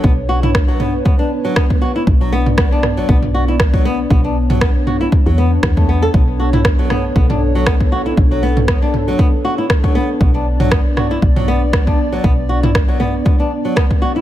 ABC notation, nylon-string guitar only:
X:1
M:4/4
L:1/16
Q:"Swing 16ths" 1/4=118
K:Bm
V:1 name="Nylon-string guitar"
B, z F E z F, B, z B, D z F, B, z F E | z F, B, z B, D z F, B, z F E z F, B, z | B, D z F, B, z F E z F, B, z B, A, B, A | B, z F E z F, B, z B, D z F, B, z F E |
z F, B, z B, D z F, B, z F E z F, B, z | B, D z F, B, z F E z F, B, z B, D z F, | B, z F E z F, B, z B, D z F, B, z F E |]